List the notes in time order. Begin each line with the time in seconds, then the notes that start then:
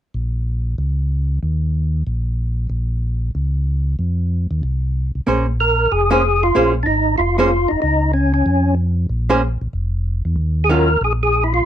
0.14 A#1
0.78 C#2
1.43 D#2
2.07 A#1
2.70 A#1
3.35 C#2
3.99 F2
4.51 D#2
4.63 C2
5.15 C2
5.27 A#1 A#3 C#4 G#4 C5
5.60 A#4
5.91 F1 G#4
6.11 A#3 C#4 G#4 C5
6.43 F4
6.55 A#1 A#3 C#4 G#4 C5
6.83 G#1 D4 D#4
7.18 F1 E4 F4
7.38 A#3 C#4 F4 G#4 C5
7.68 F1 D#4
7.82 C#2 D#4
8.14 C#4
8.34 C#4
8.46 F2
9.10 A#1
9.30 A#3 C#4 G#4 C5
9.62 A#1
9.73 F1
10.25 E2
10.36 D#2
10.64 G#4
10.69 D#3 F#3 C#4 F4 A#4
11.01 A#1 G#4
11.23 G#4
11.44 E4
11.54 F4